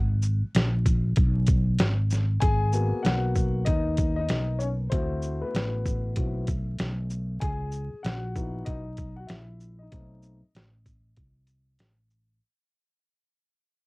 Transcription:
0.00 0.41 G#1 loud
0.22 shaker soft
0.43 muted fretless electric bass stroke soft
0.54 1.14 A#1 medium
0.54 snare loud
0.54 closed hi-hat medium
0.86 kick medium
0.86 closed hi-hat medium
0.86 shaker medium
1.16 1.76 B1 medium
1.16 kick medium
1.16 closed hi-hat medium
1.47 kick medium
1.47 closed hi-hat soft
1.47 shaker soft
1.78 2.39 G#1 medium
1.78 snare loud
1.78 closed hi-hat medium
2.10 snare soft
2.10 shaker medium
2.40 2.91 G#1 medium
2.40 3.01 G#4 medium
2.40 3.06 G#5 loud
2.40 kick loud
2.40 closed hi-hat medium
2.72 4.88 A#3 medium
2.72 4.88 B3 soft
2.72 3.04 F#4 medium
2.72 shaker soft
2.93 muted fretless electric bass stroke soft
3.03 3.64 B1 medium
3.03 3.63 F#4 medium
3.03 3.68 F#5 medium
3.03 snare loud
3.03 closed hi-hat medium
3.35 kick medium
3.35 shaker soft
3.65 4.26 D#2 medium
3.65 4.15 D#4 medium
3.65 4.15 D#5 medium
3.65 kick medium
3.65 closed hi-hat medium
3.97 kick medium
3.97 closed hi-hat soft
3.97 shaker soft
4.16 4.58 D#4 medium
4.16 4.56 D#5 medium
4.29 4.89 B1 medium
4.29 snare medium
4.29 closed hi-hat medium
4.59 4.69 C#4 medium
4.59 4.66 C#5 medium
4.59 shaker soft
4.90 5.41 D2 medium
4.90 7.38 A3 medium
4.90 5.40 C4 medium
4.90 6.15 E4 medium
4.90 6.16 F#4 medium
4.90 5.39 C5 medium
4.90 kick loud
4.90 closed hi-hat medium
5.22 shaker soft
5.41 6.15 B3 medium
5.41 6.32 B4 medium
5.41 muted fretless electric bass stroke soft
5.54 6.14 A1 medium
5.54 snare loud
5.54 closed hi-hat medium
5.86 kick medium
5.86 shaker medium
6.16 6.76 B1 medium
6.16 6.45 B3 soft
6.16 6.45 C4 soft
6.16 6.45 E4 soft
6.16 6.45 F#4 soft
6.16 kick medium
6.16 closed hi-hat medium
6.47 kick medium
6.47 closed hi-hat soft
6.47 shaker soft
6.79 7.39 B1 medium
6.79 snare loud
6.79 closed hi-hat medium
7.10 shaker soft
7.40 7.91 C#2 medium
7.40 8.01 G#4 medium
7.40 8.05 G#5 loud
7.40 kick loud
7.40 closed hi-hat medium
7.72 shaker soft
8.03 8.64 A#1 medium
8.03 8.35 F#4 medium
8.03 8.68 F#5 medium
8.03 snare loud
8.03 closed hi-hat medium
8.36 8.81 B3 medium
8.36 8.67 D#4 soft
8.36 8.81 E4 soft
8.36 8.81 F#4 medium
8.36 kick medium
8.36 shaker medium
8.65 9.26 B1 medium
8.65 9.16 D#4 medium
8.65 9.14 D#5 medium
8.65 kick medium
8.65 closed hi-hat medium
8.97 kick medium
8.97 closed hi-hat soft
8.97 shaker soft
9.16 9.29 F#4 medium
9.16 9.29 F#5 medium
9.27 9.89 A#1 medium
9.27 9.78 E4 medium
9.27 9.81 E5 medium
9.27 snare loud
9.27 closed hi-hat medium
9.60 shaker soft
9.79 9.91 D#4 medium
9.79 11.74 D#5 medium
9.91 10.41 B1 medium
9.91 10.37 A3 medium
9.91 10.37 C4 soft
9.91 10.37 D#4 medium
9.91 kick medium
9.91 closed hi-hat medium
10.22 shaker soft
10.55 11.14 A1 medium
10.55 snare loud
10.55 closed hi-hat medium
10.86 kick medium
10.86 closed hi-hat soft
10.86 shaker soft
11.17 11.77 C2 medium
11.17 kick medium
11.17 closed hi-hat medium
11.47 closed hi-hat soft
11.47 shaker soft
11.79 12.39 A1 medium
11.79 snare medium
11.79 closed hi-hat medium
12.11 shaker soft

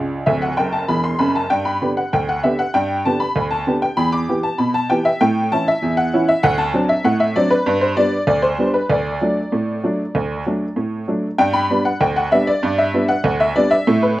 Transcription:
0.00 0.20 C#2 medium
0.00 0.22 D5 medium
0.26 0.51 D1 medium
0.26 0.51 D2 medium
0.26 0.41 E5 medium
0.42 0.57 F#5 medium
0.57 0.80 F#1 medium
0.57 0.80 F#2 medium
0.57 0.72 G5 medium
0.72 0.88 A5 medium
0.88 1.12 E1 medium
0.88 1.12 E2 medium
0.88 1.04 B5 medium
1.04 1.19 C6 medium
1.19 1.43 F#1 medium
1.19 1.42 F#2 medium
1.19 1.34 B5 medium
1.35 1.50 A5 medium
1.50 1.76 G2 medium
1.50 1.65 G5 medium
1.65 1.90 B5 medium
1.82 1.99 D3 soft
1.82 1.99 B3 soft
1.82 1.99 G4 soft
1.97 2.12 F#5 medium
2.13 2.39 D2 medium
2.13 2.28 G5 medium
2.29 2.44 F#5 medium
2.43 2.61 D3 soft
2.43 2.61 B3 soft
2.43 2.61 G4 soft
2.43 2.59 E5 medium
2.59 2.74 F#5 medium
2.74 3.01 G2 medium
2.74 3.03 G5 medium
3.05 3.23 D3 soft
3.05 3.23 B3 soft
3.05 3.23 G4 soft
3.05 3.21 A5 medium
3.20 3.45 B5 medium
3.36 3.62 D2 medium
3.51 3.76 A5 medium
3.67 3.84 D3 soft
3.67 3.84 B3 soft
3.67 3.84 G4 soft
3.82 3.98 G5 medium
3.97 4.23 E2 medium
3.97 4.13 B5 medium
4.12 4.37 D6 medium
4.29 4.46 E3 soft
4.29 4.46 B3 soft
4.29 4.46 G4 medium
4.43 4.59 A5 medium
4.58 4.85 B2 medium
4.58 4.74 B5 medium
4.74 4.90 A5 medium
4.90 5.07 E3 soft
4.90 5.07 B3 medium
4.90 5.07 G4 medium
4.90 5.05 G5 medium
5.05 5.21 E5 medium
5.21 5.47 A2 medium
5.21 5.50 G5 medium
5.52 5.69 E3 medium
5.52 5.69 C#4 medium
5.52 5.69 E4 medium
5.52 5.67 A5 medium
5.68 5.96 E5 medium
5.82 6.08 E2 medium
5.97 6.26 F#5 medium
6.13 6.30 E3 medium
6.13 6.30 C#4 medium
6.13 6.31 E4 medium
6.28 6.44 E5 medium
6.43 6.70 D2 medium
6.43 6.59 F#5 loud
6.58 6.88 A5 medium
6.74 6.91 F#3 medium
6.74 6.91 C4 medium
6.74 6.91 D4 medium
6.89 7.05 E5 medium
7.04 7.31 A2 medium
7.04 7.20 F#5 medium
7.20 7.35 E5 medium
7.36 7.53 F#3 medium
7.36 7.53 C4 medium
7.36 7.53 D4 medium
7.36 7.51 D5 medium
7.51 7.75 B4 medium
7.66 7.93 G2 medium
7.81 7.97 C5 medium
7.97 8.14 G3 medium
7.97 8.14 B3 soft
7.97 8.15 D4 medium
7.97 8.22 D5 medium
8.27 8.54 D2 medium
8.27 8.43 D5 medium
8.42 8.68 C5 medium
8.58 8.76 G3 medium
8.58 8.76 B3 soft
8.58 8.77 D4 medium
8.74 8.90 B4 medium
8.90 9.16 D2 medium
8.90 10.73 D5 medium
9.21 9.38 F#3 soft
9.21 9.39 A3 soft
9.21 9.39 D4 soft
9.52 9.79 A2 medium
9.83 10.01 F#3 soft
9.83 10.01 A3 soft
9.83 10.01 D4 soft
10.15 10.42 D2 medium
10.46 10.63 F#3 soft
10.46 10.64 A3 soft
10.46 10.64 D4 soft
10.76 11.03 A2 medium
11.08 11.25 F#3 soft
11.08 11.25 A3 soft
11.08 11.26 D4 soft
11.38 11.66 G2 medium
11.38 11.55 G5 loud
11.53 11.84 B5 medium
11.70 11.87 G3 medium
11.70 11.88 B3 medium
11.70 11.88 D4 medium
11.85 12.01 F#5 medium
12.01 12.28 D2 medium
12.01 12.17 G5 medium
12.16 12.32 F#5 medium
12.32 12.49 G3 medium
12.32 12.49 B3 medium
12.32 12.50 D4 medium
12.32 12.48 E5 medium
12.47 12.72 D5 medium
12.63 12.90 G2 medium
12.78 13.08 E5 medium
12.94 13.11 G3 medium
12.94 13.11 B3 medium
12.94 13.11 D4 medium
13.08 13.39 F#5 medium
13.24 13.51 D2 medium
13.40 13.56 E5 medium
13.56 13.73 G3 medium
13.56 13.73 B3 medium
13.56 13.74 D4 medium
13.56 13.72 D5 medium
13.71 14.01 E5 medium
13.87 14.14 A2 medium
14.03 14.18 B4 medium

